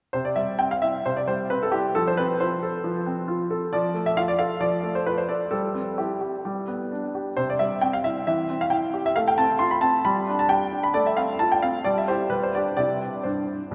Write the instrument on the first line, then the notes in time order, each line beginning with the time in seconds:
grand piano
0.13 C3 C5
0.25 D5
0.36 G3 E5
0.59 C4 G5
0.71 F5
0.82 E4 E5
1.06 C3 C5
1.17 D5
1.27 G3 C5
1.50 C4 B4
1.63 A4
1.72 E4 G4
1.95 F3 A4
2.07 C5
2.17 C4 B4
2.40 F4 C5
2.63 A4
2.84 F3
3.06 C4
3.28 F4
3.51 A4
3.73 F3 D5
3.94 A3
4.06 E5
4.17 F4 F5
4.28 D5
4.39 A4 F5
4.60 F3 D5
4.83 A3
4.95 C5
5.06 F4 B4
5.18 C5
5.29 A4 D5
5.51 G3 A4
5.74 C4
5.98 E4 G4
6.21 G4
6.45 G3
6.68 B3
6.92 D4
7.15 G4
7.37 C3 C5
7.50 D5
7.59 G3 E5
7.81 C4 G5
7.93 F5
8.04 E4 E5
8.27 E3 E5
8.50 C4
8.61 F5
8.70 E4 G5
8.94 G4
9.06 E5
9.16 A3 F5
9.28 G5
9.38 C4 A5
9.59 F4 C6
9.71 B5
9.81 C4 A5
10.05 G3 B5
10.28 D4
10.39 A5
10.49 G4 G5
10.72 D4
10.83 B5
10.94 A3 D5
11.06 E5
11.17 C4 F5
11.39 F4 A5
11.52 G5
11.62 C4 F5
11.84 G3 D5
11.98 E5
12.08 E4 G4 C5
12.30 G3 B4
12.43 C5
12.55 D4 G4 D5
12.77 C3 E4 G4 D5
13.23 G2 C5
13.71 C2